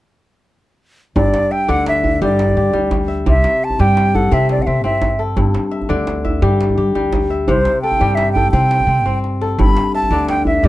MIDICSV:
0, 0, Header, 1, 5, 480
1, 0, Start_track
1, 0, Tempo, 350877
1, 1588, Time_signature, 12, 3, 24, 8
1, 14613, End_track
2, 0, Start_track
2, 0, Title_t, "Flute"
2, 0, Program_c, 0, 73
2, 1590, Note_on_c, 0, 74, 84
2, 2074, Note_on_c, 0, 79, 92
2, 2094, Note_off_c, 0, 74, 0
2, 2330, Note_on_c, 0, 78, 94
2, 2350, Note_off_c, 0, 79, 0
2, 2560, Note_off_c, 0, 78, 0
2, 2576, Note_on_c, 0, 76, 87
2, 3012, Note_off_c, 0, 76, 0
2, 3057, Note_on_c, 0, 74, 77
2, 3951, Note_off_c, 0, 74, 0
2, 4505, Note_on_c, 0, 76, 87
2, 4982, Note_on_c, 0, 81, 95
2, 5002, Note_off_c, 0, 76, 0
2, 5207, Note_on_c, 0, 79, 100
2, 5228, Note_off_c, 0, 81, 0
2, 5686, Note_on_c, 0, 78, 87
2, 5706, Note_off_c, 0, 79, 0
2, 5932, Note_on_c, 0, 76, 85
2, 5952, Note_off_c, 0, 78, 0
2, 6164, Note_off_c, 0, 76, 0
2, 6176, Note_on_c, 0, 74, 77
2, 6321, Note_on_c, 0, 78, 60
2, 6341, Note_off_c, 0, 74, 0
2, 6381, Note_on_c, 0, 76, 77
2, 6401, Note_off_c, 0, 78, 0
2, 6624, Note_off_c, 0, 76, 0
2, 6633, Note_on_c, 0, 76, 78
2, 7138, Note_off_c, 0, 76, 0
2, 10232, Note_on_c, 0, 72, 89
2, 10681, Note_off_c, 0, 72, 0
2, 10692, Note_on_c, 0, 79, 97
2, 11149, Note_on_c, 0, 76, 87
2, 11169, Note_off_c, 0, 79, 0
2, 11379, Note_off_c, 0, 76, 0
2, 11387, Note_on_c, 0, 79, 95
2, 11633, Note_off_c, 0, 79, 0
2, 11644, Note_on_c, 0, 79, 92
2, 12563, Note_off_c, 0, 79, 0
2, 13142, Note_on_c, 0, 83, 89
2, 13574, Note_off_c, 0, 83, 0
2, 13608, Note_on_c, 0, 81, 88
2, 14045, Note_off_c, 0, 81, 0
2, 14083, Note_on_c, 0, 79, 84
2, 14299, Note_off_c, 0, 79, 0
2, 14326, Note_on_c, 0, 76, 80
2, 14597, Note_off_c, 0, 76, 0
2, 14613, End_track
3, 0, Start_track
3, 0, Title_t, "Kora"
3, 0, Program_c, 1, 46
3, 1589, Note_on_c, 1, 43, 75
3, 2065, Note_on_c, 1, 76, 64
3, 2303, Note_on_c, 1, 50, 79
3, 2307, Note_on_c, 1, 74, 63
3, 2783, Note_off_c, 1, 76, 0
3, 2788, Note_on_c, 1, 76, 63
3, 3031, Note_on_c, 1, 55, 76
3, 3031, Note_on_c, 1, 67, 62
3, 3507, Note_off_c, 1, 67, 0
3, 3513, Note_on_c, 1, 67, 62
3, 3722, Note_off_c, 1, 55, 0
3, 3739, Note_on_c, 1, 55, 75
3, 3823, Note_off_c, 1, 74, 0
3, 4202, Note_off_c, 1, 76, 0
3, 4214, Note_on_c, 1, 76, 66
3, 4462, Note_on_c, 1, 48, 74
3, 4543, Note_off_c, 1, 43, 0
3, 4543, Note_off_c, 1, 50, 0
3, 4543, Note_off_c, 1, 55, 0
3, 5192, Note_on_c, 1, 55, 78
3, 5193, Note_off_c, 1, 67, 0
3, 5198, Note_on_c, 1, 67, 66
3, 5629, Note_off_c, 1, 76, 0
3, 5671, Note_on_c, 1, 69, 60
3, 5904, Note_on_c, 1, 60, 64
3, 5907, Note_off_c, 1, 60, 0
3, 5907, Note_on_c, 1, 60, 72
3, 6380, Note_off_c, 1, 60, 0
3, 6385, Note_on_c, 1, 60, 63
3, 6613, Note_off_c, 1, 60, 0
3, 6619, Note_on_c, 1, 60, 78
3, 7094, Note_off_c, 1, 69, 0
3, 7099, Note_on_c, 1, 69, 67
3, 7130, Note_off_c, 1, 67, 0
3, 7344, Note_on_c, 1, 43, 75
3, 7426, Note_off_c, 1, 48, 0
3, 7426, Note_off_c, 1, 55, 0
3, 7816, Note_on_c, 1, 76, 66
3, 8056, Note_on_c, 1, 50, 77
3, 8058, Note_on_c, 1, 74, 70
3, 8538, Note_off_c, 1, 76, 0
3, 8543, Note_on_c, 1, 76, 65
3, 8784, Note_on_c, 1, 67, 61
3, 8785, Note_on_c, 1, 55, 79
3, 8902, Note_off_c, 1, 69, 0
3, 9081, Note_off_c, 1, 60, 0
3, 9264, Note_off_c, 1, 67, 0
3, 9270, Note_on_c, 1, 67, 65
3, 9493, Note_off_c, 1, 55, 0
3, 9510, Note_on_c, 1, 55, 74
3, 9574, Note_off_c, 1, 74, 0
3, 9958, Note_off_c, 1, 76, 0
3, 9991, Note_on_c, 1, 76, 65
3, 10232, Note_on_c, 1, 48, 78
3, 10306, Note_off_c, 1, 43, 0
3, 10306, Note_off_c, 1, 50, 0
3, 10306, Note_off_c, 1, 55, 0
3, 10718, Note_on_c, 1, 69, 65
3, 10951, Note_off_c, 1, 67, 0
3, 10952, Note_on_c, 1, 55, 80
3, 10957, Note_on_c, 1, 67, 64
3, 11405, Note_off_c, 1, 76, 0
3, 11435, Note_off_c, 1, 69, 0
3, 11441, Note_on_c, 1, 69, 61
3, 11676, Note_on_c, 1, 60, 62
3, 11681, Note_off_c, 1, 60, 0
3, 11681, Note_on_c, 1, 60, 72
3, 12145, Note_off_c, 1, 60, 0
3, 12150, Note_on_c, 1, 60, 62
3, 12383, Note_off_c, 1, 60, 0
3, 12389, Note_on_c, 1, 60, 76
3, 12873, Note_off_c, 1, 69, 0
3, 12878, Note_on_c, 1, 69, 63
3, 12889, Note_off_c, 1, 67, 0
3, 13117, Note_on_c, 1, 43, 76
3, 13181, Note_off_c, 1, 48, 0
3, 13181, Note_off_c, 1, 55, 0
3, 13603, Note_on_c, 1, 76, 64
3, 13841, Note_on_c, 1, 50, 77
3, 13846, Note_on_c, 1, 74, 65
3, 14313, Note_off_c, 1, 76, 0
3, 14319, Note_on_c, 1, 76, 58
3, 14563, Note_on_c, 1, 55, 73
3, 14566, Note_on_c, 1, 67, 61
3, 14613, Note_off_c, 1, 43, 0
3, 14613, Note_off_c, 1, 50, 0
3, 14613, Note_off_c, 1, 55, 0
3, 14613, Note_off_c, 1, 60, 0
3, 14613, Note_off_c, 1, 67, 0
3, 14613, Note_off_c, 1, 69, 0
3, 14613, Note_off_c, 1, 74, 0
3, 14613, Note_off_c, 1, 76, 0
3, 14613, End_track
4, 0, Start_track
4, 0, Title_t, "Upright bass"
4, 0, Program_c, 2, 32
4, 1584, Note_on_c, 2, 31, 92
4, 1809, Note_off_c, 2, 31, 0
4, 2311, Note_on_c, 2, 38, 91
4, 2980, Note_off_c, 2, 38, 0
4, 3032, Note_on_c, 2, 43, 98
4, 3478, Note_off_c, 2, 43, 0
4, 3514, Note_on_c, 2, 43, 82
4, 3758, Note_off_c, 2, 43, 0
4, 3758, Note_on_c, 2, 38, 82
4, 4425, Note_off_c, 2, 38, 0
4, 4472, Note_on_c, 2, 36, 88
4, 4696, Note_off_c, 2, 36, 0
4, 5195, Note_on_c, 2, 43, 93
4, 5865, Note_off_c, 2, 43, 0
4, 5914, Note_on_c, 2, 48, 100
4, 6361, Note_off_c, 2, 48, 0
4, 6390, Note_on_c, 2, 48, 81
4, 6622, Note_off_c, 2, 48, 0
4, 6622, Note_on_c, 2, 43, 82
4, 7298, Note_off_c, 2, 43, 0
4, 7344, Note_on_c, 2, 31, 94
4, 7573, Note_off_c, 2, 31, 0
4, 8068, Note_on_c, 2, 38, 92
4, 8741, Note_off_c, 2, 38, 0
4, 8786, Note_on_c, 2, 43, 104
4, 9237, Note_off_c, 2, 43, 0
4, 9270, Note_on_c, 2, 43, 81
4, 9510, Note_off_c, 2, 43, 0
4, 9510, Note_on_c, 2, 38, 83
4, 10181, Note_off_c, 2, 38, 0
4, 10242, Note_on_c, 2, 36, 96
4, 10463, Note_off_c, 2, 36, 0
4, 10959, Note_on_c, 2, 43, 87
4, 11625, Note_off_c, 2, 43, 0
4, 11671, Note_on_c, 2, 48, 94
4, 12118, Note_off_c, 2, 48, 0
4, 12132, Note_on_c, 2, 48, 79
4, 12368, Note_off_c, 2, 48, 0
4, 12368, Note_on_c, 2, 43, 82
4, 13047, Note_off_c, 2, 43, 0
4, 13114, Note_on_c, 2, 31, 93
4, 13335, Note_off_c, 2, 31, 0
4, 13826, Note_on_c, 2, 38, 89
4, 14494, Note_off_c, 2, 38, 0
4, 14552, Note_on_c, 2, 43, 98
4, 14613, Note_off_c, 2, 43, 0
4, 14613, End_track
5, 0, Start_track
5, 0, Title_t, "Djembe"
5, 1591, Note_on_c, 9, 62, 20
5, 1591, Note_on_c, 9, 63, 63
5, 1591, Note_on_c, 9, 64, 66
5, 1728, Note_off_c, 9, 62, 0
5, 1728, Note_off_c, 9, 63, 0
5, 1728, Note_off_c, 9, 64, 0
5, 1828, Note_on_c, 9, 62, 66
5, 1954, Note_off_c, 9, 62, 0
5, 1954, Note_on_c, 9, 62, 20
5, 2090, Note_off_c, 9, 62, 0
5, 2190, Note_on_c, 9, 62, 21
5, 2309, Note_off_c, 9, 62, 0
5, 2309, Note_on_c, 9, 62, 20
5, 2309, Note_on_c, 9, 63, 65
5, 2446, Note_off_c, 9, 62, 0
5, 2446, Note_off_c, 9, 63, 0
5, 2550, Note_on_c, 9, 62, 71
5, 2687, Note_off_c, 9, 62, 0
5, 2786, Note_on_c, 9, 64, 68
5, 2923, Note_off_c, 9, 64, 0
5, 3034, Note_on_c, 9, 63, 70
5, 3171, Note_off_c, 9, 63, 0
5, 3270, Note_on_c, 9, 62, 68
5, 3398, Note_on_c, 9, 64, 51
5, 3407, Note_off_c, 9, 62, 0
5, 3534, Note_off_c, 9, 64, 0
5, 3629, Note_on_c, 9, 62, 20
5, 3743, Note_on_c, 9, 63, 63
5, 3766, Note_off_c, 9, 62, 0
5, 3880, Note_off_c, 9, 63, 0
5, 3982, Note_on_c, 9, 62, 65
5, 3982, Note_on_c, 9, 64, 67
5, 4119, Note_off_c, 9, 62, 0
5, 4119, Note_off_c, 9, 64, 0
5, 4465, Note_on_c, 9, 62, 23
5, 4465, Note_on_c, 9, 63, 72
5, 4465, Note_on_c, 9, 64, 71
5, 4602, Note_off_c, 9, 62, 0
5, 4602, Note_off_c, 9, 63, 0
5, 4602, Note_off_c, 9, 64, 0
5, 4706, Note_on_c, 9, 62, 72
5, 4825, Note_off_c, 9, 62, 0
5, 4825, Note_on_c, 9, 62, 22
5, 4962, Note_off_c, 9, 62, 0
5, 5061, Note_on_c, 9, 62, 22
5, 5061, Note_on_c, 9, 64, 52
5, 5185, Note_off_c, 9, 62, 0
5, 5185, Note_on_c, 9, 62, 20
5, 5185, Note_on_c, 9, 63, 64
5, 5198, Note_off_c, 9, 64, 0
5, 5322, Note_off_c, 9, 62, 0
5, 5322, Note_off_c, 9, 63, 0
5, 5430, Note_on_c, 9, 62, 70
5, 5567, Note_off_c, 9, 62, 0
5, 5673, Note_on_c, 9, 64, 65
5, 5810, Note_off_c, 9, 64, 0
5, 5905, Note_on_c, 9, 63, 63
5, 6042, Note_off_c, 9, 63, 0
5, 6145, Note_on_c, 9, 62, 63
5, 6270, Note_on_c, 9, 64, 49
5, 6281, Note_off_c, 9, 62, 0
5, 6407, Note_off_c, 9, 64, 0
5, 6512, Note_on_c, 9, 62, 18
5, 6639, Note_on_c, 9, 63, 56
5, 6649, Note_off_c, 9, 62, 0
5, 6753, Note_on_c, 9, 62, 22
5, 6776, Note_off_c, 9, 63, 0
5, 6861, Note_off_c, 9, 62, 0
5, 6861, Note_on_c, 9, 62, 59
5, 6861, Note_on_c, 9, 64, 64
5, 6998, Note_off_c, 9, 62, 0
5, 6998, Note_off_c, 9, 64, 0
5, 7339, Note_on_c, 9, 62, 19
5, 7339, Note_on_c, 9, 63, 61
5, 7339, Note_on_c, 9, 64, 59
5, 7476, Note_off_c, 9, 62, 0
5, 7476, Note_off_c, 9, 63, 0
5, 7476, Note_off_c, 9, 64, 0
5, 7585, Note_on_c, 9, 62, 63
5, 7711, Note_off_c, 9, 62, 0
5, 7711, Note_on_c, 9, 62, 18
5, 7848, Note_off_c, 9, 62, 0
5, 7955, Note_on_c, 9, 62, 19
5, 7955, Note_on_c, 9, 64, 47
5, 8072, Note_off_c, 9, 62, 0
5, 8072, Note_on_c, 9, 62, 19
5, 8072, Note_on_c, 9, 63, 58
5, 8092, Note_off_c, 9, 64, 0
5, 8209, Note_off_c, 9, 62, 0
5, 8209, Note_off_c, 9, 63, 0
5, 8305, Note_on_c, 9, 62, 66
5, 8442, Note_off_c, 9, 62, 0
5, 8555, Note_on_c, 9, 64, 60
5, 8692, Note_off_c, 9, 64, 0
5, 8789, Note_on_c, 9, 63, 62
5, 8926, Note_off_c, 9, 63, 0
5, 9037, Note_on_c, 9, 62, 64
5, 9152, Note_on_c, 9, 64, 53
5, 9173, Note_off_c, 9, 62, 0
5, 9289, Note_off_c, 9, 64, 0
5, 9389, Note_on_c, 9, 62, 19
5, 9513, Note_on_c, 9, 63, 58
5, 9526, Note_off_c, 9, 62, 0
5, 9623, Note_on_c, 9, 62, 22
5, 9650, Note_off_c, 9, 63, 0
5, 9747, Note_off_c, 9, 62, 0
5, 9747, Note_on_c, 9, 62, 64
5, 9747, Note_on_c, 9, 64, 62
5, 9884, Note_off_c, 9, 62, 0
5, 9884, Note_off_c, 9, 64, 0
5, 10229, Note_on_c, 9, 63, 67
5, 10229, Note_on_c, 9, 64, 69
5, 10361, Note_on_c, 9, 62, 20
5, 10366, Note_off_c, 9, 63, 0
5, 10366, Note_off_c, 9, 64, 0
5, 10468, Note_off_c, 9, 62, 0
5, 10468, Note_on_c, 9, 62, 68
5, 10605, Note_off_c, 9, 62, 0
5, 10828, Note_on_c, 9, 64, 48
5, 10939, Note_on_c, 9, 63, 64
5, 10965, Note_off_c, 9, 64, 0
5, 11076, Note_off_c, 9, 63, 0
5, 11181, Note_on_c, 9, 62, 73
5, 11318, Note_off_c, 9, 62, 0
5, 11435, Note_on_c, 9, 64, 70
5, 11572, Note_off_c, 9, 64, 0
5, 11668, Note_on_c, 9, 62, 21
5, 11668, Note_on_c, 9, 63, 72
5, 11805, Note_off_c, 9, 62, 0
5, 11805, Note_off_c, 9, 63, 0
5, 11912, Note_on_c, 9, 62, 64
5, 12037, Note_off_c, 9, 62, 0
5, 12037, Note_on_c, 9, 62, 22
5, 12037, Note_on_c, 9, 64, 56
5, 12174, Note_off_c, 9, 62, 0
5, 12174, Note_off_c, 9, 64, 0
5, 12397, Note_on_c, 9, 64, 36
5, 12534, Note_off_c, 9, 64, 0
5, 12640, Note_on_c, 9, 62, 43
5, 12776, Note_off_c, 9, 62, 0
5, 12879, Note_on_c, 9, 62, 49
5, 13016, Note_off_c, 9, 62, 0
5, 13125, Note_on_c, 9, 62, 23
5, 13125, Note_on_c, 9, 63, 74
5, 13125, Note_on_c, 9, 64, 70
5, 13262, Note_off_c, 9, 62, 0
5, 13262, Note_off_c, 9, 63, 0
5, 13262, Note_off_c, 9, 64, 0
5, 13359, Note_on_c, 9, 62, 72
5, 13485, Note_off_c, 9, 62, 0
5, 13485, Note_on_c, 9, 62, 23
5, 13622, Note_off_c, 9, 62, 0
5, 13717, Note_on_c, 9, 62, 21
5, 13717, Note_on_c, 9, 64, 54
5, 13826, Note_off_c, 9, 62, 0
5, 13826, Note_on_c, 9, 62, 21
5, 13826, Note_on_c, 9, 63, 69
5, 13854, Note_off_c, 9, 64, 0
5, 13963, Note_off_c, 9, 62, 0
5, 13963, Note_off_c, 9, 63, 0
5, 14069, Note_on_c, 9, 62, 74
5, 14206, Note_off_c, 9, 62, 0
5, 14299, Note_on_c, 9, 64, 68
5, 14436, Note_off_c, 9, 64, 0
5, 14543, Note_on_c, 9, 63, 68
5, 14613, Note_off_c, 9, 63, 0
5, 14613, End_track
0, 0, End_of_file